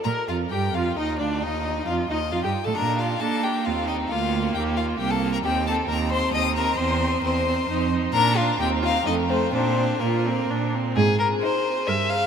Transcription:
0.04 0.14 A#2 medium
0.04 0.26 A#4 medium
0.04 0.27 A#4 medium
0.04 0.12 A#5 medium
0.28 0.51 F2 soft
0.28 0.37 F4 soft
0.28 0.37 F4 medium
0.28 0.36 F5 medium
0.51 0.74 G2 medium
0.51 0.60 G4 soft
0.51 0.74 G4 soft
0.51 0.76 G5 medium
0.74 0.97 F2 soft
0.74 0.98 F4 soft
0.74 0.84 F4 medium
0.74 0.97 F5 medium
0.96 1.21 D#2 medium
0.96 1.20 D#4 medium
0.96 1.19 D#4 medium
0.96 1.19 D#5 medium
1.19 1.44 D2 soft
1.19 1.44 D4 medium
1.19 1.44 D4 soft
1.19 1.44 D5 medium
1.42 1.87 D#2 medium
1.42 1.88 D#4 medium
1.42 1.86 D#4 medium
1.42 1.86 D#5 medium
1.86 2.09 F2 medium
1.86 2.09 F4 medium
1.86 1.97 F4 medium
1.86 1.95 F5 medium
2.10 2.34 D#2 soft
2.10 2.18 D#4 soft
2.10 2.19 D#4 medium
2.10 2.34 D#5 medium
2.32 2.44 F2 medium
2.32 2.43 F4 medium
2.32 2.37 F4 medium
2.32 2.44 F5 medium
2.43 2.52 G2 soft
2.43 2.51 G4 soft
2.43 2.52 G4 soft
2.43 2.66 G5 medium
2.64 2.71 A2 medium
2.64 2.76 A4 soft
2.64 2.79 A4 medium
2.64 2.76 A5 medium
2.75 3.19 A#2 medium
2.75 3.18 D4 soft
2.75 3.02 A#4 medium
2.75 2.97 A#5 medium
2.98 3.22 F4 medium
2.98 3.22 F5 medium
3.20 3.69 A#3 medium
3.20 3.65 D4 soft
3.20 3.46 A4 medium
3.20 3.45 A5 medium
3.43 3.68 G4 medium
3.43 3.67 G5 medium
3.65 4.11 D#2 soft
3.65 4.13 C4 soft
3.65 3.89 F4 medium
3.65 3.87 F5 medium
3.88 4.13 D#4 medium
3.88 3.96 D#5 medium
4.09 4.55 D2 medium
4.09 4.99 A#3 medium
4.09 4.55 F4 medium
4.09 4.54 F5 medium
4.55 5.00 D#2 medium
4.55 4.79 G4 medium
4.55 4.63 G5 medium
4.77 4.99 F4 medium
4.77 4.85 F5 medium
4.99 5.44 C2 medium
4.99 5.44 A#3 medium
4.99 5.12 G4 medium
4.99 5.12 G5 medium
5.10 5.32 A4 medium
5.10 5.33 A5 medium
5.33 5.37 A#4 medium
5.33 5.38 A#5 medium
5.44 5.84 D#2 medium
5.44 5.67 C4 medium
5.44 5.52 G4 medium
5.44 5.67 G5 medium
5.66 5.90 C4 medium
5.66 5.87 A4 medium
5.66 5.75 A5 medium
5.88 6.29 D#2 medium
5.88 6.12 C4 soft
5.88 5.96 A#4 medium
5.88 6.11 A#5 medium
6.10 6.34 C4 medium
6.10 6.33 C5 medium
6.10 6.33 C6 medium
6.34 6.73 D#2 medium
6.34 6.57 C4 medium
6.34 6.42 D#5 medium
6.34 6.55 D#6 medium
6.56 6.79 C4 medium
6.56 6.77 A#4 medium
6.56 6.79 A#5 medium
6.77 7.18 E2 medium
6.77 7.00 C4 medium
6.77 7.22 C5 medium
6.77 7.23 C6 medium
7.01 7.23 C4 medium
7.23 7.64 E2 medium
7.23 7.46 C4 medium
7.23 7.90 C5 medium
7.23 7.91 C6 medium
7.47 7.69 C4 medium
7.68 8.09 F2 medium
7.68 7.92 D#4 medium
7.93 8.14 D#4 medium
8.13 8.55 A#2 medium
8.13 8.37 D4 medium
8.13 8.38 A#4 medium
8.13 8.39 A#5 medium
8.37 8.60 D4 medium
8.37 8.58 F4 medium
8.37 8.61 F5 medium
8.59 9.02 D#2 medium
8.59 8.84 C4 medium
8.59 8.67 G4 medium
8.59 8.69 G5 medium
8.82 9.07 C4 soft
8.82 8.90 F4 medium
8.82 9.06 F5 medium
9.06 9.49 F2 medium
9.06 9.29 A3 medium
9.06 9.14 D#4 medium
9.06 9.15 D#5 medium
9.29 9.52 A3 soft
9.29 9.37 C4 medium
9.29 9.53 C5 medium
9.52 9.96 A#2 medium
9.52 10.01 C4 medium
9.52 9.77 D4 medium
9.52 10.02 C5 medium
9.78 10.01 D4 soft
10.00 10.44 A#2 medium
10.00 10.72 A#3 medium
10.00 10.28 F4 medium
10.00 10.73 A#4 medium
10.26 10.52 C4 medium
10.49 10.91 A#2 medium
10.49 10.76 D4 medium
10.75 10.97 C4 medium
10.96 11.33 G#2 medium
10.96 11.18 G#4 medium
11.20 11.28 A#4 medium
11.42 11.77 D#4 medium
11.42 11.88 C5 medium
11.42 11.77 G#5 medium
11.87 12.24 G2 medium
11.87 12.22 A#4 medium
11.87 12.11 E5 medium
11.87 12.21 C6 medium
12.10 12.27 F5 medium

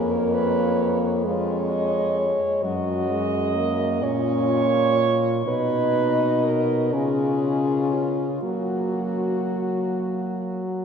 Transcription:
0.00 2.33 F2 medium
0.00 1.26 A#3 medium
0.00 0.13 G#4 medium
0.00 1.24 C#5 medium
0.11 0.35 A#4 medium
0.34 0.99 B4 loud
1.25 2.66 G#3 medium
1.25 1.73 F4 medium
1.25 2.61 C#5 medium
1.71 2.20 D#5 medium
2.19 2.65 C#5 medium
2.63 4.03 F#2 medium
2.63 3.09 F#3 medium
2.63 3.76 F#4 medium
2.63 4.05 D#5 medium
3.10 3.57 G#3 medium
3.55 4.05 A#3 medium
4.02 5.45 A#2 medium
4.02 5.19 C#4 medium
4.02 5.43 F4 medium
4.02 5.47 C#5 loud
5.45 6.94 B2 medium
5.45 6.95 D#4 medium
5.45 6.47 B4 loud
5.45 6.95 D#5 medium
6.45 6.95 A#4 medium
6.92 8.42 C#3 medium
6.92 8.42 C#4 medium
6.92 8.43 F4 medium
6.92 7.96 G#4 loud
7.94 8.45 F4 medium
8.42 10.85 F#3 medium
8.42 10.64 A#3 medium
8.42 9.94 F#4 medium
8.42 10.85 F#4 medium

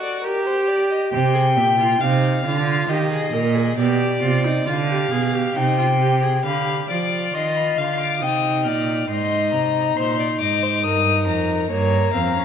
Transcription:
0.00 0.26 F#4 medium
0.00 0.24 D5 medium
0.24 1.12 G4 loud
0.24 0.48 A#4 medium
0.46 0.70 C5 medium
0.68 0.92 D5 medium
0.91 1.11 D#5 medium
1.12 1.58 C3 medium
1.12 1.34 G4 medium
1.12 2.02 G5 medium
1.35 1.43 G#4 medium
1.56 2.00 A#2 medium
1.56 1.78 G4 medium
1.79 2.01 F4 medium
2.00 2.44 C3 medium
2.00 2.44 D#4 medium
2.00 2.90 F5 medium
2.45 2.88 D3 medium
2.45 2.91 F4 medium
2.89 3.32 D#3 medium
2.89 3.11 G4 medium
2.89 3.77 D#5 medium
3.12 3.34 G#4 medium
3.33 3.77 A#2 medium
3.33 3.57 A#4 medium
3.55 3.77 G#4 medium
3.77 4.21 B2 medium
3.77 4.21 G4 medium
3.77 4.69 D5 medium
4.22 4.66 C3 medium
4.22 4.45 F4 medium
4.44 4.66 D#4 medium
4.66 5.10 D3 medium
4.66 4.74 F4 medium
4.66 5.57 F5 medium
4.89 5.13 G4 medium
5.11 5.55 B2 medium
5.11 5.35 G#4 medium
5.33 5.57 G4 medium
5.56 6.43 C3 medium
5.56 5.77 D#4 medium
5.56 6.45 G5 medium
5.78 5.86 F4 medium
6.01 6.24 G4 medium
6.23 6.45 G#4 medium
6.45 6.86 D3 medium
6.45 6.91 G4 medium
6.45 6.86 F5 medium
6.45 6.86 B5 medium
6.89 7.33 F3 medium
6.89 8.21 F4 medium
6.89 7.36 D5 medium
6.89 7.35 D6 medium
7.34 7.77 D#3 medium
7.34 7.80 D#5 medium
7.34 7.58 C6 medium
7.56 7.77 B5 medium
7.78 8.23 D3 medium
7.78 8.24 F5 medium
7.78 7.99 C6 medium
8.00 8.23 D6 medium
8.22 8.67 C3 medium
8.22 9.08 D#4 medium
8.22 8.68 G5 medium
8.22 8.65 D#6 medium
8.65 9.09 A#2 medium
8.65 9.10 D5 medium
8.65 9.08 F6 medium
9.10 9.55 G#2 medium
9.10 11.66 D#4 medium
9.10 9.96 D#5 medium
9.10 9.53 C6 medium
9.53 9.96 C3 medium
9.53 9.98 A#5 medium
9.97 10.40 A#2 medium
9.97 10.19 C5 medium
9.97 10.40 C6 medium
10.20 10.28 D5 medium
10.40 10.85 G#2 medium
10.40 10.64 D#5 medium
10.40 10.86 D6 medium
10.63 10.84 C5 medium
10.84 11.29 G2 medium
10.84 11.69 A#4 medium
10.84 11.27 D#6 medium
11.27 11.69 F2 medium
11.27 11.70 A#5 medium
11.70 12.13 G2 medium
11.70 12.16 A#3 medium
11.70 12.13 C#5 medium
11.70 12.45 A#5 medium
12.13 12.45 F2 medium
12.13 12.36 C4 medium
12.13 12.45 F5 medium
12.36 12.44 C#4 medium

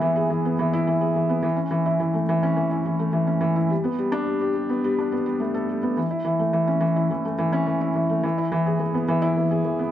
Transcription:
0.00 0.30 E3 loud
0.00 0.45 B3 medium
0.00 0.73 E4 medium
0.00 0.16 G#4 medium
0.16 0.30 G#4 medium
0.30 0.44 E3 medium
0.45 0.53 B3 medium
0.59 0.73 E3 loud
0.73 0.87 E4 loud
0.87 0.95 E3 medium
1.01 1.09 G#4 medium
1.16 1.29 E3 medium
1.30 1.38 B3 medium
1.43 1.57 E3 loud
1.56 1.71 C#4 medium
1.71 1.85 E3 loud
1.86 2.00 E4 medium
2.00 2.14 E3 medium
2.14 2.23 A3 medium
2.29 2.42 E3 loud
2.43 2.57 C#4 loud
2.56 2.65 E3 medium
2.71 2.79 E4 medium
2.85 2.99 E3 medium
2.99 3.08 A3 medium
3.13 3.27 E3 medium
3.27 3.41 C#4 medium
3.41 3.55 E3 loud
3.56 3.70 E4 medium
3.70 3.84 G3 medium
3.84 3.93 B3 medium
3.99 4.12 G3 medium
4.12 4.26 D4 loud
4.27 4.35 G3 medium
4.41 4.49 G4 medium
4.56 4.69 G3 medium
4.69 4.78 B3 medium
4.84 4.98 G3 loud
4.99 5.12 D4 medium
5.12 5.26 B3 medium
5.26 5.40 G3 medium
5.40 5.54 A3 medium
5.54 5.68 A4 medium
5.69 5.77 G3 medium
5.83 5.91 B3 medium
5.97 6.05 E3 medium
6.11 6.19 E4 medium
6.25 6.38 E3 medium
6.39 6.48 A3 medium
6.53 6.67 E3 medium
6.67 6.81 C#4 medium
6.81 6.95 E3 loud
6.96 7.10 E4 medium
7.11 7.24 E3 medium
7.25 7.33 A3 medium
7.38 7.52 E3 loud
7.52 7.66 C#4 loud
7.67 7.75 E3 medium
7.81 7.89 E4 medium
7.95 8.09 E3 medium
8.09 8.18 A3 medium
8.23 8.37 E3 loud
8.38 8.51 E4 medium
8.52 8.65 E3 loud
8.66 8.80 G#4 medium
8.79 8.93 E3 medium
8.94 9.02 B3 medium
9.08 9.22 E3 loud
9.22 9.36 E4 loud
9.37 9.45 E3 medium
9.51 9.59 G#4 medium
9.64 9.78 E3 medium
9.79 9.87 B3 medium

